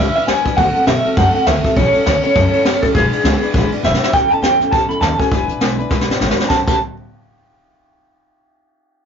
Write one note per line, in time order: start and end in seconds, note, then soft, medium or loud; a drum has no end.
0.00 0.15 E3 medium
0.00 0.16 G#3 medium
0.00 0.16 D4 medium
0.00 0.15 E4 medium
0.00 0.14 B4 medium
0.00 0.15 E5 loud
0.15 0.27 D4 soft
0.15 0.27 E4 medium
0.15 0.28 B4 medium
0.15 0.27 E5 loud
0.15 muted upright bass stroke medium
0.15 ride medium
0.27 0.39 D2 medium
0.27 0.45 G#3 medium
0.27 0.46 D4 medium
0.27 0.44 E4 medium
0.27 0.43 B4 medium
0.27 0.56 G#5 loud
0.27 snare loud
0.27 ride medium
0.44 0.53 C#2 medium
0.44 0.57 D4 soft
0.44 0.58 E4 soft
0.44 0.57 B4 medium
0.44 kick medium
0.44 ride medium
0.57 0.69 D2 loud
0.57 0.75 D3 medium
0.57 0.75 A3 medium
0.57 0.75 C4 medium
0.57 0.74 F#4 medium
0.57 0.73 A4 loud
0.57 0.87 F#5 loud
0.57 kick loud
0.57 ride medium
0.74 0.87 C4 soft
0.74 0.87 F#4 soft
0.74 0.87 A4 medium
0.74 muted upright bass stroke medium
0.74 ride medium
0.87 0.98 B2 loud
0.87 1.05 A3 medium
0.87 1.05 C4 medium
0.87 1.05 F#4 medium
0.87 1.04 A4 medium
0.87 1.17 E5 loud
0.87 snare loud
0.87 ride medium
1.05 1.16 C4 soft
1.05 1.17 F#4 medium
1.05 1.17 A4 medium
1.05 muted upright bass stroke medium
1.05 ride medium
1.17 1.28 F#2 medium
1.17 1.34 D3 medium
1.17 1.35 A3 medium
1.17 1.35 C4 medium
1.17 1.35 F#4 medium
1.17 1.34 A4 medium
1.17 1.34 F#5 loud
1.17 kick loud
1.17 ride medium
1.35 1.46 C4 medium
1.35 1.47 F#4 soft
1.35 1.47 A4 medium
1.35 1.47 F#5 loud
1.35 muted upright bass stroke medium
1.35 ride medium
1.47 1.58 D2 medium
1.47 1.64 A3 medium
1.47 1.65 C4 medium
1.47 1.64 F#4 medium
1.47 1.62 A4 medium
1.47 1.77 E5 medium
1.47 snare loud
1.47 ride medium
1.64 1.77 C4 soft
1.64 1.77 F#4 medium
1.64 1.76 A4 medium
1.64 muted upright bass stroke medium
1.64 kick medium
1.64 ride medium
1.76 1.87 A1 medium
1.76 1.94 A2 medium
1.76 1.94 E3 medium
1.76 1.94 G3 medium
1.76 1.93 C#4 medium
1.76 1.93 E4 medium
1.76 1.92 A4 loud
1.76 2.23 C#5 loud
1.76 kick loud
1.76 ride medium
1.93 2.03 G3 soft
1.93 2.04 C#4 soft
1.93 2.05 E4 soft
1.93 2.06 A4 medium
1.93 muted upright bass stroke medium
1.93 ride medium
2.05 2.17 D2 loud
2.05 2.23 G3 medium
2.05 2.23 C#4 medium
2.05 2.23 E4 medium
2.05 2.22 A4 medium
2.05 snare loud
2.05 ride loud
2.23 2.34 G3 medium
2.23 2.35 C#4 medium
2.23 2.35 E4 medium
2.23 2.35 A4 medium
2.23 2.79 C#5 medium
2.23 muted upright bass stroke medium
2.23 ride medium
2.35 2.47 F#2 medium
2.35 2.53 A2 medium
2.35 2.53 E3 medium
2.35 2.53 G3 loud
2.35 2.53 C#4 medium
2.35 2.53 E4 loud
2.35 2.52 A4 loud
2.35 kick loud
2.35 ride medium
2.53 2.64 G3 soft
2.53 2.65 C#4 medium
2.53 2.66 E4 medium
2.53 2.65 A4 medium
2.53 muted upright bass stroke medium
2.53 ride medium
2.65 2.76 G2 medium
2.65 2.83 G3 medium
2.65 2.83 C#4 medium
2.65 2.82 E4 medium
2.65 2.81 A4 medium
2.65 snare loud
2.65 ride medium
2.82 2.90 D2 loud
2.82 2.94 G3 medium
2.82 2.95 C#4 medium
2.82 2.94 E4 medium
2.82 2.95 A4 medium
2.82 2.87 A4 medium
2.82 kick medium
2.82 ride medium
2.94 3.06 E1 medium
2.94 3.12 E3 medium
2.94 3.12 G#3 medium
2.94 3.13 D4 medium
2.94 3.12 E4 medium
2.94 3.79 G#4 medium
2.94 3.10 B4 loud
2.94 kick loud
2.94 ride medium
3.12 3.23 D4 medium
3.12 3.24 E4 medium
3.12 3.24 B4 medium
3.12 muted upright bass stroke medium
3.12 ride medium
3.23 3.35 C#2 loud
3.23 3.41 G#3 medium
3.23 3.42 D4 medium
3.23 3.41 E4 medium
3.23 3.40 B4 medium
3.23 snare loud
3.23 ride medium
3.41 3.53 D4 medium
3.41 3.53 E4 medium
3.41 3.54 B4 medium
3.41 ride medium
3.53 3.65 G#1 medium
3.53 3.71 E3 medium
3.53 3.71 G#3 medium
3.53 3.72 D4 loud
3.53 3.71 E4 medium
3.53 3.70 B4 loud
3.53 kick loud
3.53 ride medium
3.71 3.82 D4 medium
3.71 3.83 E4 medium
3.71 3.83 B4 medium
3.71 muted upright bass stroke medium
3.71 ride medium
3.83 3.94 E1 medium
3.83 4.01 G#3 medium
3.83 4.01 D4 medium
3.83 4.01 E4 medium
3.83 4.00 B4 medium
3.83 4.12 E5 medium
3.83 snare medium
3.94 snare medium
4.01 4.13 D4 soft
4.01 4.13 E4 medium
4.01 4.13 B4 medium
4.01 muted upright bass stroke medium
4.01 snare loud
4.13 4.29 A1 medium
4.13 4.30 A2 medium
4.13 4.31 E3 medium
4.13 4.31 G3 medium
4.13 4.30 C#4 medium
4.13 4.30 E4 medium
4.13 4.29 A4 medium
4.13 4.30 G5 loud
4.13 kick loud
4.13 snare soft
4.13 closed hi-hat medium
4.30 4.41 E2 loud
4.30 4.41 G3 soft
4.30 4.42 C#4 soft
4.30 4.42 E4 soft
4.30 4.42 A4 medium
4.30 4.42 A5 medium
4.30 closed hi-hat medium
4.42 4.58 E2 loud
4.42 4.60 A2 medium
4.42 4.60 E3 medium
4.42 4.60 G3 medium
4.42 4.60 C#4 medium
4.42 4.59 E4 medium
4.42 4.58 A4 medium
4.42 4.71 G5 medium
4.42 snare loud
4.42 closed hi-hat loud
4.60 4.70 G2 medium
4.60 4.70 G3 soft
4.60 4.71 C#4 medium
4.60 4.71 E4 medium
4.60 4.72 A4 medium
4.60 snare soft
4.60 closed hi-hat medium
4.71 4.88 E2 medium
4.71 4.89 G3 medium
4.71 4.89 C#4 medium
4.71 4.89 E4 medium
4.71 4.88 A4 medium
4.71 4.89 A5 loud
4.71 kick loud
4.71 closed hi-hat medium
4.89 5.00 C#2 medium
4.89 5.00 G3 soft
4.89 5.00 C#4 soft
4.89 5.00 E4 medium
4.89 5.01 A4 medium
4.89 5.01 B5 loud
4.89 closed hi-hat medium
5.00 5.17 D#2 medium
5.00 5.19 A2 medium
5.00 5.19 E3 medium
5.00 5.19 G3 medium
5.00 5.19 C#4 medium
5.00 5.18 E4 medium
5.00 5.17 A4 medium
5.00 5.18 A5 loud
5.00 snare loud
5.00 closed hi-hat medium
5.18 5.30 G3 soft
5.18 5.31 C#4 medium
5.18 5.30 E4 medium
5.18 5.31 A4 medium
5.18 6.20 G#5 medium
5.18 kick medium
5.18 closed hi-hat medium
5.30 5.47 E1 medium
5.30 5.48 E3 medium
5.30 5.49 G#3 medium
5.30 5.49 D4 loud
5.30 5.48 E4 medium
5.30 5.47 B4 medium
5.30 kick loud
5.30 closed hi-hat medium
5.48 5.60 B1 medium
5.48 5.60 D4 soft
5.48 5.60 E4 soft
5.48 5.61 B4 soft
5.48 closed hi-hat medium
5.60 5.76 B1 medium
5.60 5.78 E3 medium
5.60 5.79 G#3 medium
5.60 5.79 D4 medium
5.60 5.78 E4 loud
5.60 5.77 B4 loud
5.60 snare loud
5.60 closed hi-hat medium
5.78 5.89 D2 medium
5.78 5.90 D4 medium
5.78 5.90 E4 medium
5.78 5.90 B4 medium
5.78 closed hi-hat medium
5.90 6.06 B1 medium
5.90 6.08 G#3 medium
5.90 6.08 D4 medium
5.90 6.08 E4 medium
5.90 6.07 B4 medium
5.90 kick loud
5.90 snare medium
6.01 snare medium
6.08 6.19 G#1 medium
6.08 6.20 D4 soft
6.08 6.20 E4 medium
6.08 6.20 B4 medium
6.08 snare medium
6.20 6.36 G#1 medium
6.20 6.38 E3 medium
6.20 6.38 G#3 medium
6.20 6.38 D4 medium
6.20 6.37 E4 medium
6.20 6.36 B4 loud
6.20 snare medium
6.31 snare loud
6.37 6.50 D4 soft
6.37 6.50 E4 medium
6.37 6.50 B4 medium
6.37 muted upright bass stroke medium
6.37 snare medium
6.49 6.60 A1 medium
6.49 6.60 A2 medium
6.49 6.60 E3 medium
6.49 6.61 G3 medium
6.49 6.61 C#4 medium
6.49 6.61 F#4 medium
6.49 6.61 B4 medium
6.49 6.59 A5 medium
6.49 kick loud
6.49 snare medium
6.67 6.79 A1 loud
6.67 6.77 A2 medium
6.67 6.77 E3 medium
6.67 6.77 G3 medium
6.67 6.77 C#4 medium
6.67 6.78 F#4 medium
6.67 6.78 B4 medium
6.67 6.78 A5 medium
6.67 kick loud
6.67 crash medium